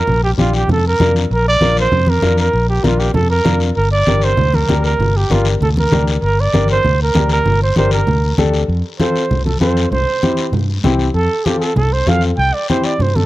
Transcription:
Already playing: A#4
0.07 A#1, low conga, long guiro
0.24 G4
0.38 A#1 D4 F4 G4, high conga, short guiro
0.53 G4, short guiro
0.68 F2 A4, low conga, long guiro
0.87 A#4
1.00 F2 D4 F4 A#4, high conga, low conga, short guiro
1.16 short guiro
1.31 A#1 A#4, long guiro
1.48 D5
1.61 A#1 D4 F4 A#4, high conga, short guiro
1.77 C5, short guiro
1.92 F2, low conga, long guiro
2.07 A#4, high conga
2.22 F2 D4 F4 A#4, high conga, short guiro
2.37 A#4, short guiro
2.53 A#1, long guiro
2.69 G4
2.83 A#1 D4 F4 A#4, high conga, short guiro
2.99 G4, short guiro
3.14 F2 A4, low conga, long guiro
3.30 A#4
3.44 F2 D4 F4 A#4, high conga, low conga, short guiro
3.60 short guiro
3.75 G1 A#4, long guiro
3.92 D5
4.06 G1 D4 G4 A#4, high conga, short guiro
4.21 C5, short guiro
4.37 D2, low conga, long guiro
4.54 A#4, high conga
4.68 D2 D4 G4 A#4, high conga, short guiro
4.84 A#4, short guiro
4.99 G1, low conga, long guiro
5.17 G4
5.30 G1 D4 F4 G4 A#4, high conga, short guiro
5.45 short guiro
5.61 D2 A4, low conga, long guiro
5.77 A#4, high conga
5.91 D2 D4 G4 A#4, high conga, low conga, short guiro
6.07 short guiro
6.22 G1 A#4, long guiro
6.40 D5
6.53 G1 D4 G4 A#4, high conga, short guiro
6.68 C5, short guiro
6.83 D2, low conga, long guiro
7.02 A#4
7.14 D2 D4 G4 A#4, high conga, short guiro
7.29 A#4, short guiro
7.45 G1, low conga, long guiro
7.62 C5
7.76 G1 D4 G4 A#4 C5, high conga, short guiro
7.91 A#4, short guiro
8.07 D2, low conga, long guiro
8.38 D2 D4 G4 A4, high conga, short guiro
8.54 short guiro
8.68 F2, long guiro
9.00 C4 F4 A4 C5, high conga, short guiro
9.16 short guiro
9.31 C2, low conga, long guiro
9.45 A4, high conga
9.60 F2 C4 F4 A4 C5, high conga, short guiro
9.77 short guiro
9.91 C2 C5, low conga, long guiro
10.22 C4 E4 G4, high conga, short guiro
10.37 short guiro
10.52 G2, low conga, long guiro
10.84 C2 C4 E4 G4, high conga, low conga, short guiro
10.99 short guiro
11.14 F2 A4, long guiro
11.45 C4 F4 G4 A4, high conga, short guiro
11.60 A4, short guiro
11.76 C2 A4, low conga, long guiro
11.93 C5
12.06 F2 C4 F4 A4 F5, high conga, short guiro
12.21 short guiro
12.37 C2 G5, long guiro
12.53 D5
12.68 C4 E4 G4 C5, high conga, short guiro
12.84 D5, short guiro
12.99 G2 C5, low conga, long guiro
13.16 A4, high conga

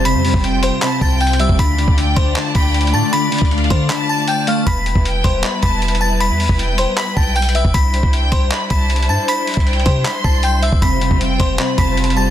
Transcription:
Already playing: F1 G3 C4 F4 C5
0.05 C3 B5 B6, closed hi-hat
0.15 F2
0.24 C3, open hi-hat
0.34 F1, kick
0.44 C3 G5, closed hi-hat
0.63 C5 C6, closed hi-hat
0.82 C3 A5 B5 B6, clap, closed hi-hat
1.01 C2 G5 A5 A6, kick
1.20 G5 G6, closed hi-hat
1.27 closed hi-hat
1.33 closed hi-hat
1.40 G3 E5 E6, closed hi-hat
1.49 F1, kick
1.59 D2 D3 A3 D4 D5 B5 B6, kick, closed hi-hat
1.78 D3, closed hi-hat
1.88 D2, kick
1.97 D3 G5, closed hi-hat
2.16 D2 C5 C6, kick, closed hi-hat
2.36 D3 A5, clap, closed hi-hat
2.55 D2 G5 B5 B6, kick, closed hi-hat
2.74 closed hi-hat
2.81 closed hi-hat
2.87 closed hi-hat
2.93 A2 A3 A5 A6
3.13 D3 B5 B6, closed hi-hat
3.32 D3, closed hi-hat, open hi-hat
3.38 D2, kick, closed hi-hat
3.45 closed hi-hat
3.51 D3 F5, closed hi-hat
3.58 closed hi-hat
3.64 closed hi-hat
3.70 D3 C5 C6, kick, closed hi-hat
3.90 D3 A5 B5 B6, clap, closed hi-hat
4.09 A5 A6
4.28 G5 G6, closed hi-hat
4.47 A3 F5 F6, closed hi-hat
4.67 E1 G3 B3 E4 B4 B5 B6, kick, closed hi-hat
4.86 closed hi-hat
4.95 E1, kick
5.05 G5, closed hi-hat
5.24 E1 C5 C6, kick, closed hi-hat
5.43 B5, clap, closed hi-hat
5.62 E1 A5 B5 B6, kick, closed hi-hat
5.82 closed hi-hat
5.88 closed hi-hat
5.95 closed hi-hat
6.01 A5 A6
6.20 B5 B6, closed hi-hat
6.30 E2
6.40 open hi-hat
6.49 E1, kick
6.59 G5, closed hi-hat
6.78 C5 C6, closed hi-hat
6.97 B5 B6, clap, closed hi-hat
7.17 B1 G5 A5 A6, kick
7.36 G5 G6, closed hi-hat
7.42 closed hi-hat
7.49 closed hi-hat
7.55 E5 E6, closed hi-hat
7.65 E1, kick
7.74 C2 G3 D4 E4 C5 B5 B6, kick, closed hi-hat
7.94 closed hi-hat
8.03 C2, kick
8.13 G5, closed hi-hat
8.32 C2 C5 C6, kick, closed hi-hat
8.51 B5, clap, closed hi-hat
8.70 C2 A5 B5 B6, kick, closed hi-hat
8.90 closed hi-hat
8.96 closed hi-hat
9.03 closed hi-hat
9.09 G2 A5 A6
9.28 B5 B6, closed hi-hat
9.47 closed hi-hat, open hi-hat
9.54 C2, kick, closed hi-hat
9.60 closed hi-hat
9.67 G5, closed hi-hat
9.73 closed hi-hat
9.80 closed hi-hat
9.86 C3 C5 C6, kick, closed hi-hat
10.05 B5 C6 B6, clap, closed hi-hat
10.24 C2 A5 A6, kick
10.43 G5 G6, closed hi-hat
10.62 E5 E6, closed hi-hat
10.72 C2, kick
10.82 F1 C3 C4 F4 C5 B5 B6, kick, closed hi-hat
11.01 C3, closed hi-hat
11.11 F1, kick
11.20 C3 G5, closed hi-hat
11.40 F1 C5 C6, kick, closed hi-hat
11.59 C3 B5, clap, closed hi-hat
11.78 F1 A5 B5 B6, kick, closed hi-hat
11.97 closed hi-hat
12.04 closed hi-hat
12.10 closed hi-hat
12.17 G3 A5 A6

